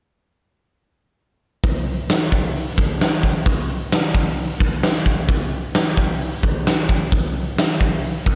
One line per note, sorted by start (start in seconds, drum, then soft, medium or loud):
1.64 kick loud
1.64 open hi-hat medium
2.09 snare loud
2.09 open hi-hat medium
2.32 kick medium
2.56 open hi-hat medium
2.78 kick medium
3.01 snare loud
3.01 open hi-hat medium
3.23 kick medium
3.46 kick loud
3.46 open hi-hat medium
3.92 snare loud
3.92 open hi-hat medium
4.15 kick medium
4.37 open hi-hat medium
4.60 kick medium
4.83 snare loud
4.83 open hi-hat medium
5.06 kick medium
5.28 kick loud
5.28 open hi-hat medium
5.74 snare loud
5.74 open hi-hat medium
5.97 kick medium
6.21 open hi-hat medium
6.43 kick medium
6.67 snare loud
6.67 open hi-hat medium
6.89 kick medium
7.12 kick loud
7.12 open hi-hat medium
7.58 snare loud
7.58 open hi-hat medium
7.81 kick medium
8.04 open hi-hat medium
8.26 kick medium